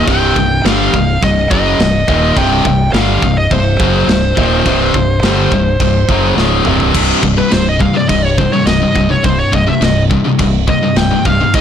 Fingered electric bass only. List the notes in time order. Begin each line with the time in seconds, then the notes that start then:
0.08 C1
0.36 C1
0.65 G1
0.94 C1
1.23 C1
1.51 F#1
1.79 C1
2.08 D#1
2.36 C1
2.65 C1
2.94 G1
3.23 C1
3.52 C1
3.80 F#1
4.08 C1
4.37 D#1
4.66 C1
4.94 C1
5.23 G1
5.52 C1
5.80 C1
6.09 F#1
6.37 C#1
6.66 C1
6.95 C1
7.23 C1
7.53 C1
8.10 C1
8.67 C1
8.96 C1
9.24 C1
9.53 C1
9.82 C1
10.40 C1
10.97 C1
11.25 C1
11.54 G#1